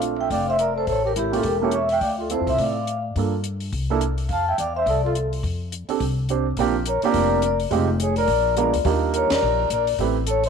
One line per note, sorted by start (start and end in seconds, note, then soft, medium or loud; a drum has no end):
0.00 0.27 A#1 medium
0.00 0.53 A3 medium
0.00 0.53 C4 soft
0.00 0.54 D4 soft
0.00 0.54 F4 medium
0.00 closed hi-hat soft
0.19 0.30 E5 medium
0.19 0.31 G5 medium
0.30 0.85 F1 medium
0.30 0.47 D5 medium
0.30 0.48 F5 medium
0.30 kick soft
0.30 open hi-hat soft
0.49 0.58 C5 medium
0.49 0.60 E5 medium
0.59 0.75 A#4 medium
0.59 0.77 D5 medium
0.59 closed hi-hat soft
0.76 0.87 A4 medium
0.76 0.88 C5 medium
0.87 1.14 A1 medium
0.87 1.04 A4 medium
0.87 1.06 C#5 medium
0.87 kick soft
0.87 open hi-hat soft
1.05 1.15 G4 medium
1.05 1.17 A#4 medium
1.16 1.43 G#1 medium
1.16 1.32 E4 medium
1.16 1.34 G4 medium
1.16 closed hi-hat soft
1.32 1.43 A#3 medium
1.32 1.43 C#4 soft
1.32 1.43 E4 soft
1.32 1.44 F4 medium
1.32 1.43 G4 medium
1.32 open hi-hat soft
1.36 1.46 A4 medium
1.43 1.98 E1 medium
1.43 1.60 G4 medium
1.43 kick soft
1.43 open hi-hat soft
1.47 1.63 A#4 medium
1.60 1.72 A#3 medium
1.60 1.72 C#4 soft
1.60 1.73 E4 soft
1.60 1.73 G4 medium
1.60 1.72 A4 medium
1.64 1.74 C#5 medium
1.71 1.89 C#5 medium
1.71 closed hi-hat soft
1.77 1.92 E5 medium
1.89 2.01 E5 medium
1.89 2.02 G5 medium
1.89 open hi-hat soft
2.01 2.37 D2 medium
2.01 2.17 D5 medium
2.01 2.20 F5 medium
2.01 kick soft
2.01 open hi-hat soft
2.18 2.29 F4 soft
2.18 2.31 A4 medium
2.30 2.72 C4 soft
2.30 2.73 E4 soft
2.30 2.73 F4 soft
2.30 2.46 A4 medium
2.30 2.73 A4 medium
2.30 2.48 C5 medium
2.30 closed hi-hat soft
2.40 2.49 F2 soft
2.47 2.58 C2 medium
2.47 2.58 C5 medium
2.47 2.59 E5 medium
2.47 kick soft
2.47 open hi-hat soft
2.58 3.13 A2 medium
2.58 3.01 D5 medium
2.58 3.03 F5 medium
2.58 kick soft
2.58 open hi-hat soft
2.87 closed hi-hat soft
3.16 3.70 G2 medium
3.16 3.32 A#3 soft
3.16 3.32 D4 soft
3.16 3.32 F4 soft
3.16 3.33 A4 medium
3.16 kick soft
3.16 open hi-hat soft
3.44 closed hi-hat soft
3.60 open hi-hat soft
3.73 4.27 C2 medium
3.73 kick soft
3.73 open hi-hat soft
3.90 4.00 A#3 medium
3.90 4.01 D4 medium
3.90 4.01 E4 medium
3.90 4.01 A4 medium
4.01 closed hi-hat soft
4.18 open hi-hat soft
4.29 4.56 F2 medium
4.29 4.46 F5 medium
4.29 4.48 A5 medium
4.29 kick soft
4.29 open hi-hat soft
4.48 4.58 E5 medium
4.48 4.59 G5 medium
4.58 4.85 E2 medium
4.58 4.75 D5 medium
4.58 4.76 F5 medium
4.58 closed hi-hat soft
4.76 4.86 C5 medium
4.76 4.87 E5 medium
4.86 5.41 C2 medium
4.86 5.03 A4 medium
4.86 5.04 D5 medium
4.86 kick soft
4.86 open hi-hat soft
5.04 5.15 F4 medium
5.04 5.13 A4 medium
5.15 closed hi-hat soft
5.33 open hi-hat soft
5.43 5.86 F2 medium
5.43 kick soft
5.43 open hi-hat soft
5.72 closed hi-hat soft
5.89 5.99 C4 medium
5.89 6.00 D4 soft
5.89 6.00 G4 soft
5.89 6.00 A4 medium
5.89 muted upright bass stroke soft
5.89 open hi-hat soft
6.00 6.54 C2 medium
6.00 kick soft
6.00 open hi-hat soft
6.29 6.45 C4 soft
6.29 6.45 D4 soft
6.29 6.45 G4 soft
6.29 6.46 C5 medium
6.29 closed hi-hat soft
6.57 7.00 A#1 medium
6.57 6.73 A#3 medium
6.57 6.74 C4 medium
6.57 6.74 D4 medium
6.57 6.74 F4 medium
6.57 6.74 G4 medium
6.57 kick soft
6.57 open hi-hat soft
6.85 7.02 A#4 medium
6.85 7.04 C#5 medium
6.85 closed hi-hat soft
7.02 7.41 A#3 medium
7.02 7.41 C4 medium
7.02 7.41 D4 medium
7.02 7.41 F4 medium
7.02 7.41 G4 medium
7.02 7.40 A#4 medium
7.02 7.41 D5 medium
7.02 muted upright bass stroke soft
7.02 open hi-hat soft
7.14 7.68 F1 medium
7.14 kick soft
7.14 open hi-hat soft
7.42 7.59 A#4 medium
7.42 7.61 D5 medium
7.42 closed hi-hat soft
7.60 open hi-hat soft
7.71 8.25 F1 medium
7.71 7.86 G#3 medium
7.71 7.86 C4 medium
7.71 7.87 D#4 medium
7.71 7.87 F4 medium
7.71 7.87 G4 medium
7.71 kick soft
7.71 open hi-hat soft
8.00 8.16 G#4 medium
8.00 8.18 C#5 medium
8.00 closed hi-hat medium
8.16 8.54 A#4 medium
8.16 8.55 D5 medium
8.16 open hi-hat soft
8.28 8.70 A#1 medium
8.28 kick soft
8.28 open hi-hat soft
8.57 8.72 G#3 medium
8.57 8.72 B3 soft
8.57 8.72 D4 soft
8.57 8.72 F4 soft
8.57 8.73 A#4 medium
8.57 8.74 D5 medium
8.57 closed hi-hat soft
8.74 8.84 D2 medium
8.74 open hi-hat soft
8.85 9.27 D#2 medium
8.85 9.63 G3 medium
8.85 9.64 D4 medium
8.85 9.63 D#4 medium
8.85 9.64 F4 medium
8.85 9.64 A#4 medium
8.85 kick soft
8.85 open hi-hat soft
9.14 9.30 A#4 medium
9.14 9.32 C#5 medium
9.14 closed hi-hat medium
9.30 9.41 E2 medium
9.30 9.68 A#4 medium
9.30 9.68 D5 medium
9.30 snare medium
9.30 ride medium
9.42 9.68 A#1 medium
9.70 9.97 A#1 medium
9.70 9.87 A#4 medium
9.70 9.89 D5 medium
9.70 closed hi-hat medium
9.87 open hi-hat soft
9.98 10.49 A1 medium
9.98 10.14 A3 medium
9.98 10.14 C4 medium
9.98 10.15 E4 soft
9.98 10.15 G4 soft
9.98 10.15 B4 medium
9.98 kick soft
9.98 open hi-hat soft
10.27 10.43 A4 medium
10.27 10.45 C#5 medium
10.27 closed hi-hat medium
10.44 10.49 C5 medium
10.44 open hi-hat soft